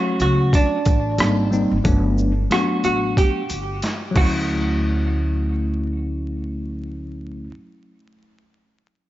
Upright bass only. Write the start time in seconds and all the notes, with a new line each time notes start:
0.20 C#2
0.86 A1
1.19 G#1
1.71 G#1
1.85 G1
2.84 A1
3.50 G1
4.16 D2